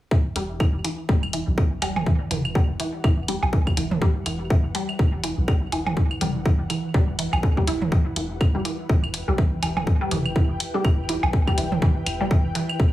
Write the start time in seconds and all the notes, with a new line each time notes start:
0.11 E3 E4, kick
0.36 E1 G3, closed hi-hat
0.60 E3, kick, claves
0.72 E1 F#5
0.84 E3, closed hi-hat
0.96 B4
1.09 E1 G3, kick
1.23 claves
1.33 E3, closed hi-hat
1.47 B1
1.58 E3, kick
1.82 E1 G3, closed hi-hat, claves, low woodblock
1.96 mid tom, low woodblock
2.06 E3, kick
2.31 E1 E3, closed hi-hat, mid tom
2.45 claves
2.55 G3, kick
2.69 E1
2.80 E3, closed hi-hat
3.04 E1 E3, kick, claves
3.28 G3, closed hi-hat
3.43 B1, low woodblock
3.53 E3, kick
3.67 kick, claves
3.77 E1 E3, closed hi-hat
3.91 mid tom
4.02 G3, kick
4.26 E1 E3, closed hi-hat, claves
4.50 E3, kick
4.65 E1
4.75 G3, closed hi-hat
4.89 claves
4.99 E1 E3, kick
5.24 E3, closed hi-hat
5.38 B1
5.48 G3, kick, claves
5.72 E1 E3, closed hi-hat, low woodblock
5.87 mid tom, low woodblock
5.97 E3, kick
6.11 claves
6.21 E1 G3, closed hi-hat, mid tom
6.46 E3, kick
6.60 E1
6.70 E3, closed hi-hat, claves
6.94 E1 G3, kick
7.19 E3, closed hi-hat
7.33 B1, claves, low woodblock
7.43 D3, kick
7.57 G3, kick
7.67 E1 E4, closed hi-hat
7.82 mid tom
7.92 E3, kick
8.16 E1 E3, closed hi-hat
8.41 kick, claves
8.53 E1 G3 G5
8.65 E3, closed hi-hat
8.89 E1 E3, kick
9.04 claves
9.14 closed hi-hat
9.28 B1 G3
9.38 E3, kick
9.63 E1 E3, closed hi-hat, claves, low woodblock
9.77 mid tom, low woodblock
9.87 kick
10.01 G3
10.11 E1 E3, closed hi-hat, mid tom
10.26 claves
10.36 E3, kick
10.50 E1
10.60 closed hi-hat
10.74 G3
10.84 E1 E3, kick, claves
11.09 E3, closed hi-hat
11.23 B1, low woodblock
11.33 kick
11.47 G3, kick, claves
11.58 E1 E3, closed hi-hat
11.72 mid tom
11.82 E3, kick
12.06 E1, closed hi-hat, claves
12.20 G3
12.31 E3, kick
12.45 E1
12.55 E3, closed hi-hat
12.69 claves
12.80 E1, kick